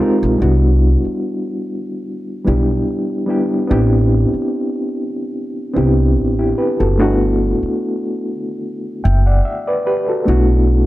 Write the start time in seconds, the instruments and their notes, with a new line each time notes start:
Already playing: reed electric piano G#3 G4
0.00 reed electric piano C4 D#4 F4 A#4
0.23 upright bass A#1
0.38 upright bass C2, reed electric piano G3 B3 D4 E4 F#4
1.05 muted upright bass stroke
2.44 upright bass B1, reed electric piano G3 B3 D4 E4 G4
3.26 reed electric piano G3 B3 D4 E4
3.30 reed electric piano G4
3.67 upright bass A1, reed electric piano B3 C4 D4 E4 G4
4.33 muted upright bass stroke
5.74 upright bass C2, reed electric piano B3 C4 D4 E4 G4
6.17 upright bass A1
6.39 reed electric piano E4 G4
6.58 reed electric piano G4 B4
6.80 upright bass F#1, reed electric piano F#4 A4
6.98 upright bass G1, reed electric piano A3 B3 D4 E4 F#4
7.63 muted upright bass stroke
9.04 upright bass F#1, reed electric piano E5 G5
9.26 reed electric piano D5 F#5
9.45 reed electric piano E5
9.67 reed electric piano B4 D5
9.86 reed electric piano G4 B4
10.08 reed electric piano F#4 A4
10.25 upright bass B1, reed electric piano A3 B3 D4 E4 F#4